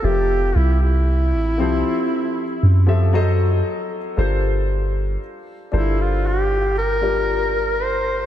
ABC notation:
X:1
M:4/4
L:1/16
Q:1/4=58
K:Gdor
V:1 name="Grand piano"
[F,CGAe]4 z2 [F,CGAc]3 z2 [F,CGAe] [^F,^FAc^d]3 z | [G,DFABc]4 z2 [G,DFABc]3 z2 [G,DFGBd]3 z2 |]
V:2 name="Duduk"
G2 E E8 z4 z | z6 E F G2 B4 c2 |]
V:3 name="808-style bass" clef=bass
F,,,2 C,,3 A,,, C,, z3 ^F,,4 z2 | G,,,4 z2 G,,,8- G,,,2 |]